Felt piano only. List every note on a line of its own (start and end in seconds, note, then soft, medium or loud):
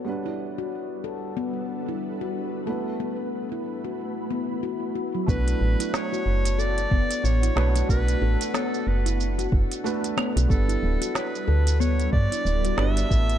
0.05 2.63 G3 medium
0.05 2.64 B3 medium
0.05 2.64 D4 medium
0.09 2.65 B4 medium
2.66 5.24 A3 medium
2.66 5.25 B3 medium
2.66 5.26 E4 medium
2.70 5.26 B4 medium
5.26 7.52 A3 medium
5.26 7.53 D4 medium
5.26 7.54 F#4 medium
5.30 7.54 B4 medium
7.55 7.85 A3 medium
7.55 7.86 D4 medium
7.55 7.86 F#4 medium
7.55 7.86 B4 loud
7.88 9.81 A3 medium
7.88 9.82 D4 medium
7.88 9.82 F#4 medium
7.88 9.83 B4 medium
9.84 10.46 A3 medium
9.84 10.47 D4 medium
9.84 10.47 F#4 medium
9.84 10.47 B4 medium
10.49 12.74 G3 medium
10.49 12.75 B3 medium
10.49 12.76 D4 medium
10.53 12.76 B4 medium
12.77 13.07 G3 medium
12.77 13.07 B3 medium
12.77 13.08 D4 medium
12.77 13.08 B4 loud
13.09 13.38 A3 medium
13.09 13.38 B3 medium
13.09 13.38 E4 medium
13.13 13.38 B4 medium